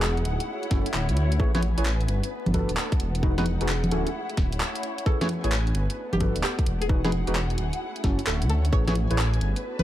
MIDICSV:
0, 0, Header, 1, 7, 480
1, 0, Start_track
1, 0, Key_signature, 3, "major"
1, 0, Tempo, 458015
1, 1464, Time_signature, 4, 2, 24, 8
1, 10303, End_track
2, 0, Start_track
2, 0, Title_t, "String section"
2, 0, Program_c, 0, 48
2, 0, Note_on_c, 0, 63, 81
2, 0, Note_on_c, 0, 68, 84
2, 0, Note_on_c, 0, 78, 81
2, 264, Note_off_c, 0, 63, 0
2, 265, Note_on_c, 0, 64, 88
2, 546, Note_on_c, 0, 73, 84
2, 743, Note_off_c, 0, 68, 0
2, 1766, Note_off_c, 0, 73, 0
2, 1768, Note_off_c, 0, 64, 0
2, 1768, Note_off_c, 0, 78, 0
2, 1814, Note_on_c, 0, 71, 75
2, 1815, Note_on_c, 0, 80, 67
2, 2184, Note_off_c, 0, 80, 0
2, 2185, Note_on_c, 0, 59, 86
2, 2664, Note_off_c, 0, 71, 0
2, 2742, Note_on_c, 0, 78, 77
2, 2743, Note_on_c, 0, 69, 79
2, 3384, Note_off_c, 0, 69, 0
2, 3384, Note_on_c, 0, 63, 71
2, 3688, Note_off_c, 0, 59, 0
2, 3736, Note_on_c, 0, 68, 65
2, 4102, Note_on_c, 0, 64, 82
2, 4104, Note_off_c, 0, 63, 0
2, 4585, Note_off_c, 0, 68, 0
2, 4667, Note_on_c, 0, 73, 64
2, 5606, Note_off_c, 0, 64, 0
2, 5607, Note_off_c, 0, 78, 0
2, 5609, Note_off_c, 0, 73, 0
2, 5643, Note_on_c, 0, 71, 74
2, 5656, Note_on_c, 0, 80, 66
2, 6025, Note_off_c, 0, 80, 0
2, 6026, Note_on_c, 0, 59, 86
2, 6375, Note_on_c, 0, 69, 84
2, 6506, Note_off_c, 0, 71, 0
2, 6583, Note_on_c, 0, 78, 86
2, 7226, Note_off_c, 0, 69, 0
2, 7227, Note_on_c, 0, 63, 63
2, 7528, Note_off_c, 0, 59, 0
2, 7579, Note_on_c, 0, 68, 70
2, 7946, Note_off_c, 0, 63, 0
2, 7946, Note_on_c, 0, 64, 74
2, 8426, Note_off_c, 0, 68, 0
2, 8503, Note_on_c, 0, 73, 62
2, 9445, Note_on_c, 0, 71, 81
2, 9447, Note_off_c, 0, 78, 0
2, 9448, Note_off_c, 0, 64, 0
2, 9448, Note_off_c, 0, 73, 0
2, 9496, Note_on_c, 0, 80, 82
2, 9865, Note_off_c, 0, 80, 0
2, 9866, Note_on_c, 0, 66, 77
2, 10161, Note_on_c, 0, 81, 69
2, 10303, Note_off_c, 0, 66, 0
2, 10303, Note_off_c, 0, 71, 0
2, 10303, Note_off_c, 0, 81, 0
2, 10303, End_track
3, 0, Start_track
3, 0, Title_t, "Synth pluck"
3, 0, Program_c, 1, 84
3, 5304, Note_on_c, 1, 69, 94
3, 5498, Note_off_c, 1, 69, 0
3, 6424, Note_on_c, 1, 67, 97
3, 6576, Note_off_c, 1, 67, 0
3, 6743, Note_on_c, 1, 67, 97
3, 6938, Note_off_c, 1, 67, 0
3, 7143, Note_on_c, 1, 68, 94
3, 7221, Note_off_c, 1, 68, 0
3, 7383, Note_on_c, 1, 68, 93
3, 7535, Note_off_c, 1, 68, 0
3, 7705, Note_on_c, 1, 73, 90
3, 7899, Note_off_c, 1, 73, 0
3, 8666, Note_on_c, 1, 69, 87
3, 8818, Note_off_c, 1, 69, 0
3, 8904, Note_on_c, 1, 69, 94
3, 9057, Note_off_c, 1, 69, 0
3, 9143, Note_on_c, 1, 73, 97
3, 9338, Note_off_c, 1, 73, 0
3, 10264, Note_on_c, 1, 71, 100
3, 10303, Note_off_c, 1, 71, 0
3, 10303, End_track
4, 0, Start_track
4, 0, Title_t, "Tine electric piano"
4, 0, Program_c, 2, 4
4, 745, Note_on_c, 2, 61, 76
4, 745, Note_on_c, 2, 64, 68
4, 745, Note_on_c, 2, 66, 67
4, 745, Note_on_c, 2, 69, 82
4, 911, Note_off_c, 2, 61, 0
4, 911, Note_off_c, 2, 64, 0
4, 911, Note_off_c, 2, 66, 0
4, 911, Note_off_c, 2, 69, 0
4, 1464, Note_on_c, 2, 68, 71
4, 1464, Note_on_c, 2, 73, 85
4, 1465, Note_on_c, 2, 64, 77
4, 1465, Note_on_c, 2, 71, 72
4, 1573, Note_off_c, 2, 64, 0
4, 1573, Note_off_c, 2, 68, 0
4, 1573, Note_off_c, 2, 71, 0
4, 1573, Note_off_c, 2, 73, 0
4, 1622, Note_on_c, 2, 68, 89
4, 1623, Note_on_c, 2, 64, 101
4, 1623, Note_on_c, 2, 71, 94
4, 1623, Note_on_c, 2, 73, 111
4, 1679, Note_off_c, 2, 64, 0
4, 1679, Note_off_c, 2, 68, 0
4, 1679, Note_off_c, 2, 71, 0
4, 1679, Note_off_c, 2, 73, 0
4, 1863, Note_on_c, 2, 64, 88
4, 1863, Note_on_c, 2, 68, 81
4, 1863, Note_on_c, 2, 71, 82
4, 1863, Note_on_c, 2, 73, 99
4, 1960, Note_off_c, 2, 64, 0
4, 1960, Note_off_c, 2, 68, 0
4, 1960, Note_off_c, 2, 71, 0
4, 1960, Note_off_c, 2, 73, 0
4, 2664, Note_on_c, 2, 62, 76
4, 2664, Note_on_c, 2, 69, 70
4, 2665, Note_on_c, 2, 66, 68
4, 2665, Note_on_c, 2, 71, 82
4, 2830, Note_off_c, 2, 62, 0
4, 2831, Note_off_c, 2, 66, 0
4, 2831, Note_off_c, 2, 69, 0
4, 2831, Note_off_c, 2, 71, 0
4, 3384, Note_on_c, 2, 71, 84
4, 3385, Note_on_c, 2, 63, 78
4, 3385, Note_on_c, 2, 66, 70
4, 3385, Note_on_c, 2, 68, 68
4, 3493, Note_off_c, 2, 63, 0
4, 3493, Note_off_c, 2, 66, 0
4, 3493, Note_off_c, 2, 68, 0
4, 3493, Note_off_c, 2, 71, 0
4, 3543, Note_on_c, 2, 63, 99
4, 3543, Note_on_c, 2, 66, 91
4, 3543, Note_on_c, 2, 68, 89
4, 3543, Note_on_c, 2, 71, 107
4, 3599, Note_off_c, 2, 63, 0
4, 3599, Note_off_c, 2, 66, 0
4, 3599, Note_off_c, 2, 68, 0
4, 3599, Note_off_c, 2, 71, 0
4, 3783, Note_on_c, 2, 63, 86
4, 3783, Note_on_c, 2, 66, 81
4, 3783, Note_on_c, 2, 68, 76
4, 3783, Note_on_c, 2, 71, 95
4, 3880, Note_off_c, 2, 63, 0
4, 3880, Note_off_c, 2, 66, 0
4, 3880, Note_off_c, 2, 71, 0
4, 3881, Note_off_c, 2, 68, 0
4, 4105, Note_on_c, 2, 61, 86
4, 4105, Note_on_c, 2, 64, 81
4, 4105, Note_on_c, 2, 66, 75
4, 4105, Note_on_c, 2, 69, 92
4, 4271, Note_off_c, 2, 61, 0
4, 4271, Note_off_c, 2, 64, 0
4, 4271, Note_off_c, 2, 66, 0
4, 4271, Note_off_c, 2, 69, 0
4, 5304, Note_on_c, 2, 71, 69
4, 5304, Note_on_c, 2, 73, 85
4, 5305, Note_on_c, 2, 64, 77
4, 5305, Note_on_c, 2, 68, 69
4, 5413, Note_off_c, 2, 64, 0
4, 5413, Note_off_c, 2, 68, 0
4, 5413, Note_off_c, 2, 71, 0
4, 5413, Note_off_c, 2, 73, 0
4, 5462, Note_on_c, 2, 64, 97
4, 5462, Note_on_c, 2, 68, 90
4, 5462, Note_on_c, 2, 71, 88
4, 5462, Note_on_c, 2, 73, 112
4, 5518, Note_off_c, 2, 64, 0
4, 5518, Note_off_c, 2, 68, 0
4, 5518, Note_off_c, 2, 73, 0
4, 5519, Note_off_c, 2, 71, 0
4, 5702, Note_on_c, 2, 64, 85
4, 5702, Note_on_c, 2, 68, 80
4, 5702, Note_on_c, 2, 71, 82
4, 5702, Note_on_c, 2, 73, 100
4, 5800, Note_off_c, 2, 64, 0
4, 5800, Note_off_c, 2, 68, 0
4, 5800, Note_off_c, 2, 71, 0
4, 5800, Note_off_c, 2, 73, 0
4, 6504, Note_on_c, 2, 62, 72
4, 6504, Note_on_c, 2, 66, 68
4, 6505, Note_on_c, 2, 69, 69
4, 6505, Note_on_c, 2, 71, 84
4, 6671, Note_off_c, 2, 62, 0
4, 6671, Note_off_c, 2, 66, 0
4, 6671, Note_off_c, 2, 69, 0
4, 6671, Note_off_c, 2, 71, 0
4, 7225, Note_on_c, 2, 63, 76
4, 7225, Note_on_c, 2, 66, 72
4, 7225, Note_on_c, 2, 68, 73
4, 7225, Note_on_c, 2, 71, 87
4, 7333, Note_off_c, 2, 63, 0
4, 7333, Note_off_c, 2, 66, 0
4, 7333, Note_off_c, 2, 68, 0
4, 7333, Note_off_c, 2, 71, 0
4, 7383, Note_on_c, 2, 66, 91
4, 7383, Note_on_c, 2, 68, 91
4, 7383, Note_on_c, 2, 71, 108
4, 7384, Note_on_c, 2, 63, 101
4, 7439, Note_off_c, 2, 63, 0
4, 7439, Note_off_c, 2, 66, 0
4, 7439, Note_off_c, 2, 68, 0
4, 7439, Note_off_c, 2, 71, 0
4, 7623, Note_on_c, 2, 63, 90
4, 7623, Note_on_c, 2, 66, 80
4, 7623, Note_on_c, 2, 68, 82
4, 7623, Note_on_c, 2, 71, 98
4, 7720, Note_off_c, 2, 63, 0
4, 7720, Note_off_c, 2, 66, 0
4, 7720, Note_off_c, 2, 68, 0
4, 7720, Note_off_c, 2, 71, 0
4, 8425, Note_on_c, 2, 61, 74
4, 8425, Note_on_c, 2, 64, 68
4, 8425, Note_on_c, 2, 66, 68
4, 8425, Note_on_c, 2, 69, 83
4, 8591, Note_off_c, 2, 61, 0
4, 8591, Note_off_c, 2, 64, 0
4, 8591, Note_off_c, 2, 66, 0
4, 8591, Note_off_c, 2, 69, 0
4, 9145, Note_on_c, 2, 64, 77
4, 9145, Note_on_c, 2, 68, 69
4, 9145, Note_on_c, 2, 71, 68
4, 9145, Note_on_c, 2, 73, 86
4, 9253, Note_off_c, 2, 64, 0
4, 9254, Note_off_c, 2, 68, 0
4, 9254, Note_off_c, 2, 71, 0
4, 9254, Note_off_c, 2, 73, 0
4, 9303, Note_on_c, 2, 64, 104
4, 9303, Note_on_c, 2, 68, 91
4, 9303, Note_on_c, 2, 73, 110
4, 9304, Note_on_c, 2, 71, 92
4, 9359, Note_off_c, 2, 64, 0
4, 9359, Note_off_c, 2, 68, 0
4, 9359, Note_off_c, 2, 71, 0
4, 9359, Note_off_c, 2, 73, 0
4, 9543, Note_on_c, 2, 64, 90
4, 9543, Note_on_c, 2, 68, 79
4, 9543, Note_on_c, 2, 71, 80
4, 9543, Note_on_c, 2, 73, 99
4, 9640, Note_off_c, 2, 68, 0
4, 9640, Note_off_c, 2, 71, 0
4, 9641, Note_off_c, 2, 64, 0
4, 9641, Note_off_c, 2, 73, 0
4, 10303, End_track
5, 0, Start_track
5, 0, Title_t, "String machine"
5, 0, Program_c, 3, 50
5, 0, Note_on_c, 3, 56, 76
5, 0, Note_on_c, 3, 59, 86
5, 0, Note_on_c, 3, 63, 69
5, 0, Note_on_c, 3, 66, 89
5, 238, Note_off_c, 3, 59, 0
5, 257, Note_off_c, 3, 56, 0
5, 257, Note_off_c, 3, 63, 0
5, 262, Note_on_c, 3, 64, 75
5, 263, Note_on_c, 3, 61, 75
5, 264, Note_on_c, 3, 57, 79
5, 1445, Note_off_c, 3, 66, 0
5, 1452, Note_off_c, 3, 57, 0
5, 1461, Note_on_c, 3, 59, 86
5, 1461, Note_on_c, 3, 68, 85
5, 2164, Note_off_c, 3, 61, 0
5, 2164, Note_off_c, 3, 64, 0
5, 2175, Note_off_c, 3, 68, 0
5, 2183, Note_on_c, 3, 66, 86
5, 2184, Note_on_c, 3, 57, 80
5, 2185, Note_on_c, 3, 62, 73
5, 3372, Note_off_c, 3, 57, 0
5, 3372, Note_off_c, 3, 62, 0
5, 3372, Note_off_c, 3, 66, 0
5, 3383, Note_on_c, 3, 56, 77
5, 3384, Note_on_c, 3, 66, 96
5, 3385, Note_on_c, 3, 63, 70
5, 4076, Note_off_c, 3, 59, 0
5, 4096, Note_off_c, 3, 56, 0
5, 4097, Note_off_c, 3, 63, 0
5, 4099, Note_on_c, 3, 57, 81
5, 4100, Note_on_c, 3, 61, 75
5, 4101, Note_on_c, 3, 64, 74
5, 5285, Note_off_c, 3, 66, 0
5, 5290, Note_off_c, 3, 57, 0
5, 5290, Note_off_c, 3, 64, 0
5, 5301, Note_on_c, 3, 59, 76
5, 5301, Note_on_c, 3, 64, 68
5, 5301, Note_on_c, 3, 68, 83
5, 6003, Note_off_c, 3, 61, 0
5, 6011, Note_off_c, 3, 59, 0
5, 6015, Note_off_c, 3, 64, 0
5, 6015, Note_off_c, 3, 68, 0
5, 6023, Note_on_c, 3, 57, 78
5, 6023, Note_on_c, 3, 59, 76
5, 6023, Note_on_c, 3, 62, 74
5, 6023, Note_on_c, 3, 66, 89
5, 7211, Note_off_c, 3, 57, 0
5, 7211, Note_off_c, 3, 66, 0
5, 7212, Note_off_c, 3, 62, 0
5, 7222, Note_on_c, 3, 63, 68
5, 7223, Note_on_c, 3, 66, 92
5, 7224, Note_on_c, 3, 56, 80
5, 7924, Note_off_c, 3, 59, 0
5, 7936, Note_off_c, 3, 63, 0
5, 7937, Note_off_c, 3, 56, 0
5, 7942, Note_on_c, 3, 61, 76
5, 7942, Note_on_c, 3, 64, 77
5, 7943, Note_on_c, 3, 57, 77
5, 9124, Note_off_c, 3, 66, 0
5, 9132, Note_off_c, 3, 57, 0
5, 9144, Note_on_c, 3, 59, 85
5, 9144, Note_on_c, 3, 68, 85
5, 9844, Note_off_c, 3, 61, 0
5, 9844, Note_off_c, 3, 64, 0
5, 9857, Note_off_c, 3, 68, 0
5, 9863, Note_on_c, 3, 57, 80
5, 9864, Note_on_c, 3, 62, 74
5, 9864, Note_on_c, 3, 66, 93
5, 10303, Note_off_c, 3, 57, 0
5, 10303, Note_off_c, 3, 59, 0
5, 10303, Note_off_c, 3, 62, 0
5, 10303, Note_off_c, 3, 66, 0
5, 10303, End_track
6, 0, Start_track
6, 0, Title_t, "Detuned saw bass"
6, 0, Program_c, 4, 39
6, 0, Note_on_c, 4, 28, 103
6, 242, Note_off_c, 4, 28, 0
6, 263, Note_on_c, 4, 26, 93
6, 396, Note_off_c, 4, 26, 0
6, 745, Note_on_c, 4, 30, 90
6, 877, Note_off_c, 4, 30, 0
6, 982, Note_on_c, 4, 26, 85
6, 1140, Note_on_c, 4, 38, 84
6, 1156, Note_off_c, 4, 26, 0
6, 1463, Note_on_c, 4, 33, 86
6, 1479, Note_off_c, 4, 38, 0
6, 1820, Note_off_c, 4, 33, 0
6, 1862, Note_on_c, 4, 33, 102
6, 2163, Note_off_c, 4, 33, 0
6, 2183, Note_on_c, 4, 31, 93
6, 2316, Note_off_c, 4, 31, 0
6, 2582, Note_on_c, 4, 31, 87
6, 2770, Note_off_c, 4, 31, 0
6, 2823, Note_on_c, 4, 26, 103
6, 2891, Note_off_c, 4, 26, 0
6, 3144, Note_on_c, 4, 28, 89
6, 3741, Note_off_c, 4, 28, 0
6, 3782, Note_on_c, 4, 28, 104
6, 4083, Note_off_c, 4, 28, 0
6, 4104, Note_on_c, 4, 26, 93
6, 4236, Note_off_c, 4, 26, 0
6, 4586, Note_on_c, 4, 26, 99
6, 4825, Note_off_c, 4, 26, 0
6, 5703, Note_on_c, 4, 33, 102
6, 6003, Note_off_c, 4, 33, 0
6, 6024, Note_on_c, 4, 31, 90
6, 6156, Note_off_c, 4, 31, 0
6, 6423, Note_on_c, 4, 31, 86
6, 6611, Note_off_c, 4, 31, 0
6, 6663, Note_on_c, 4, 26, 104
6, 6731, Note_off_c, 4, 26, 0
6, 6984, Note_on_c, 4, 28, 89
6, 7581, Note_off_c, 4, 28, 0
6, 7623, Note_on_c, 4, 28, 104
6, 7923, Note_off_c, 4, 28, 0
6, 7944, Note_on_c, 4, 26, 88
6, 8077, Note_off_c, 4, 26, 0
6, 8426, Note_on_c, 4, 30, 93
6, 8557, Note_off_c, 4, 30, 0
6, 8667, Note_on_c, 4, 26, 85
6, 8825, Note_on_c, 4, 38, 88
6, 8841, Note_off_c, 4, 26, 0
6, 9124, Note_off_c, 4, 38, 0
6, 9146, Note_on_c, 4, 33, 85
6, 9502, Note_off_c, 4, 33, 0
6, 9544, Note_on_c, 4, 33, 104
6, 9843, Note_off_c, 4, 33, 0
6, 9865, Note_on_c, 4, 31, 89
6, 9997, Note_off_c, 4, 31, 0
6, 10263, Note_on_c, 4, 31, 86
6, 10303, Note_off_c, 4, 31, 0
6, 10303, End_track
7, 0, Start_track
7, 0, Title_t, "Drums"
7, 23, Note_on_c, 9, 39, 113
7, 128, Note_off_c, 9, 39, 0
7, 182, Note_on_c, 9, 42, 35
7, 263, Note_off_c, 9, 42, 0
7, 263, Note_on_c, 9, 42, 100
7, 368, Note_off_c, 9, 42, 0
7, 421, Note_on_c, 9, 42, 65
7, 526, Note_off_c, 9, 42, 0
7, 661, Note_on_c, 9, 42, 37
7, 743, Note_off_c, 9, 42, 0
7, 743, Note_on_c, 9, 38, 47
7, 743, Note_on_c, 9, 42, 100
7, 744, Note_on_c, 9, 36, 101
7, 848, Note_off_c, 9, 38, 0
7, 848, Note_off_c, 9, 42, 0
7, 849, Note_off_c, 9, 36, 0
7, 902, Note_on_c, 9, 42, 65
7, 983, Note_on_c, 9, 39, 110
7, 1007, Note_off_c, 9, 42, 0
7, 1088, Note_off_c, 9, 39, 0
7, 1141, Note_on_c, 9, 42, 55
7, 1223, Note_off_c, 9, 42, 0
7, 1223, Note_on_c, 9, 42, 101
7, 1328, Note_off_c, 9, 42, 0
7, 1381, Note_on_c, 9, 42, 68
7, 1464, Note_on_c, 9, 36, 107
7, 1486, Note_off_c, 9, 42, 0
7, 1568, Note_off_c, 9, 36, 0
7, 1621, Note_on_c, 9, 38, 65
7, 1621, Note_on_c, 9, 42, 56
7, 1621, Note_on_c, 9, 63, 60
7, 1703, Note_off_c, 9, 42, 0
7, 1703, Note_on_c, 9, 42, 104
7, 1726, Note_off_c, 9, 38, 0
7, 1726, Note_off_c, 9, 63, 0
7, 1808, Note_off_c, 9, 42, 0
7, 1862, Note_on_c, 9, 42, 65
7, 1943, Note_on_c, 9, 39, 115
7, 1966, Note_off_c, 9, 42, 0
7, 2048, Note_off_c, 9, 39, 0
7, 2102, Note_on_c, 9, 42, 37
7, 2184, Note_off_c, 9, 42, 0
7, 2184, Note_on_c, 9, 42, 107
7, 2289, Note_off_c, 9, 42, 0
7, 2342, Note_on_c, 9, 42, 67
7, 2447, Note_off_c, 9, 42, 0
7, 2582, Note_on_c, 9, 42, 39
7, 2582, Note_on_c, 9, 63, 76
7, 2663, Note_off_c, 9, 42, 0
7, 2663, Note_on_c, 9, 42, 105
7, 2664, Note_on_c, 9, 36, 58
7, 2687, Note_off_c, 9, 63, 0
7, 2767, Note_off_c, 9, 42, 0
7, 2769, Note_off_c, 9, 36, 0
7, 2820, Note_on_c, 9, 42, 67
7, 2902, Note_on_c, 9, 39, 107
7, 2925, Note_off_c, 9, 42, 0
7, 3007, Note_off_c, 9, 39, 0
7, 3061, Note_on_c, 9, 42, 56
7, 3062, Note_on_c, 9, 36, 98
7, 3142, Note_off_c, 9, 42, 0
7, 3142, Note_on_c, 9, 42, 106
7, 3167, Note_off_c, 9, 36, 0
7, 3247, Note_off_c, 9, 42, 0
7, 3301, Note_on_c, 9, 42, 68
7, 3384, Note_on_c, 9, 36, 112
7, 3405, Note_off_c, 9, 42, 0
7, 3489, Note_off_c, 9, 36, 0
7, 3541, Note_on_c, 9, 38, 68
7, 3541, Note_on_c, 9, 42, 54
7, 3541, Note_on_c, 9, 63, 58
7, 3623, Note_off_c, 9, 42, 0
7, 3623, Note_on_c, 9, 42, 107
7, 3646, Note_off_c, 9, 38, 0
7, 3646, Note_off_c, 9, 63, 0
7, 3728, Note_off_c, 9, 42, 0
7, 3781, Note_on_c, 9, 42, 67
7, 3861, Note_on_c, 9, 39, 116
7, 3885, Note_off_c, 9, 42, 0
7, 3966, Note_off_c, 9, 39, 0
7, 4021, Note_on_c, 9, 42, 37
7, 4021, Note_on_c, 9, 63, 58
7, 4102, Note_off_c, 9, 42, 0
7, 4102, Note_on_c, 9, 42, 111
7, 4126, Note_off_c, 9, 63, 0
7, 4207, Note_off_c, 9, 42, 0
7, 4261, Note_on_c, 9, 42, 65
7, 4366, Note_off_c, 9, 42, 0
7, 4501, Note_on_c, 9, 42, 37
7, 4584, Note_off_c, 9, 42, 0
7, 4584, Note_on_c, 9, 38, 50
7, 4584, Note_on_c, 9, 42, 110
7, 4585, Note_on_c, 9, 36, 99
7, 4688, Note_off_c, 9, 38, 0
7, 4688, Note_off_c, 9, 42, 0
7, 4689, Note_off_c, 9, 36, 0
7, 4742, Note_on_c, 9, 42, 65
7, 4825, Note_on_c, 9, 39, 112
7, 4847, Note_off_c, 9, 42, 0
7, 4929, Note_off_c, 9, 39, 0
7, 4983, Note_on_c, 9, 42, 55
7, 5065, Note_off_c, 9, 42, 0
7, 5065, Note_on_c, 9, 42, 106
7, 5170, Note_off_c, 9, 42, 0
7, 5223, Note_on_c, 9, 42, 71
7, 5305, Note_on_c, 9, 36, 121
7, 5327, Note_off_c, 9, 42, 0
7, 5409, Note_off_c, 9, 36, 0
7, 5462, Note_on_c, 9, 38, 73
7, 5462, Note_on_c, 9, 42, 52
7, 5462, Note_on_c, 9, 63, 58
7, 5544, Note_off_c, 9, 42, 0
7, 5544, Note_on_c, 9, 42, 109
7, 5567, Note_off_c, 9, 38, 0
7, 5567, Note_off_c, 9, 63, 0
7, 5648, Note_off_c, 9, 42, 0
7, 5702, Note_on_c, 9, 42, 65
7, 5783, Note_on_c, 9, 39, 124
7, 5807, Note_off_c, 9, 42, 0
7, 5888, Note_off_c, 9, 39, 0
7, 5942, Note_on_c, 9, 42, 34
7, 6023, Note_off_c, 9, 42, 0
7, 6023, Note_on_c, 9, 42, 108
7, 6128, Note_off_c, 9, 42, 0
7, 6182, Note_on_c, 9, 42, 62
7, 6287, Note_off_c, 9, 42, 0
7, 6422, Note_on_c, 9, 42, 37
7, 6422, Note_on_c, 9, 63, 75
7, 6503, Note_off_c, 9, 42, 0
7, 6503, Note_on_c, 9, 42, 106
7, 6505, Note_on_c, 9, 36, 61
7, 6527, Note_off_c, 9, 63, 0
7, 6608, Note_off_c, 9, 42, 0
7, 6610, Note_off_c, 9, 36, 0
7, 6662, Note_on_c, 9, 42, 65
7, 6744, Note_on_c, 9, 39, 120
7, 6767, Note_off_c, 9, 42, 0
7, 6849, Note_off_c, 9, 39, 0
7, 6903, Note_on_c, 9, 36, 102
7, 6903, Note_on_c, 9, 42, 54
7, 6985, Note_off_c, 9, 42, 0
7, 6985, Note_on_c, 9, 42, 107
7, 7008, Note_off_c, 9, 36, 0
7, 7089, Note_off_c, 9, 42, 0
7, 7143, Note_on_c, 9, 42, 68
7, 7225, Note_on_c, 9, 36, 124
7, 7248, Note_off_c, 9, 42, 0
7, 7330, Note_off_c, 9, 36, 0
7, 7383, Note_on_c, 9, 38, 72
7, 7383, Note_on_c, 9, 42, 51
7, 7383, Note_on_c, 9, 63, 62
7, 7464, Note_off_c, 9, 42, 0
7, 7464, Note_on_c, 9, 42, 104
7, 7488, Note_off_c, 9, 38, 0
7, 7488, Note_off_c, 9, 63, 0
7, 7569, Note_off_c, 9, 42, 0
7, 7622, Note_on_c, 9, 42, 62
7, 7704, Note_on_c, 9, 39, 124
7, 7727, Note_off_c, 9, 42, 0
7, 7809, Note_off_c, 9, 39, 0
7, 7862, Note_on_c, 9, 42, 34
7, 7943, Note_off_c, 9, 42, 0
7, 7943, Note_on_c, 9, 42, 106
7, 8048, Note_off_c, 9, 42, 0
7, 8102, Note_on_c, 9, 42, 61
7, 8207, Note_off_c, 9, 42, 0
7, 8341, Note_on_c, 9, 42, 35
7, 8425, Note_off_c, 9, 42, 0
7, 8425, Note_on_c, 9, 36, 109
7, 8425, Note_on_c, 9, 38, 54
7, 8425, Note_on_c, 9, 42, 103
7, 8529, Note_off_c, 9, 38, 0
7, 8529, Note_off_c, 9, 42, 0
7, 8530, Note_off_c, 9, 36, 0
7, 8582, Note_on_c, 9, 42, 62
7, 8664, Note_on_c, 9, 39, 121
7, 8687, Note_off_c, 9, 42, 0
7, 8769, Note_off_c, 9, 39, 0
7, 8822, Note_on_c, 9, 42, 53
7, 8904, Note_off_c, 9, 42, 0
7, 8904, Note_on_c, 9, 42, 103
7, 9009, Note_off_c, 9, 42, 0
7, 9062, Note_on_c, 9, 42, 64
7, 9145, Note_on_c, 9, 36, 127
7, 9167, Note_off_c, 9, 42, 0
7, 9250, Note_off_c, 9, 36, 0
7, 9301, Note_on_c, 9, 38, 71
7, 9301, Note_on_c, 9, 42, 51
7, 9301, Note_on_c, 9, 63, 65
7, 9384, Note_off_c, 9, 42, 0
7, 9384, Note_on_c, 9, 42, 96
7, 9406, Note_off_c, 9, 38, 0
7, 9406, Note_off_c, 9, 63, 0
7, 9489, Note_off_c, 9, 42, 0
7, 9543, Note_on_c, 9, 42, 60
7, 9624, Note_on_c, 9, 39, 127
7, 9648, Note_off_c, 9, 42, 0
7, 9729, Note_off_c, 9, 39, 0
7, 9784, Note_on_c, 9, 42, 34
7, 9864, Note_off_c, 9, 42, 0
7, 9864, Note_on_c, 9, 42, 100
7, 9969, Note_off_c, 9, 42, 0
7, 10023, Note_on_c, 9, 42, 60
7, 10128, Note_off_c, 9, 42, 0
7, 10263, Note_on_c, 9, 42, 35
7, 10263, Note_on_c, 9, 63, 81
7, 10303, Note_off_c, 9, 42, 0
7, 10303, Note_off_c, 9, 63, 0
7, 10303, End_track
0, 0, End_of_file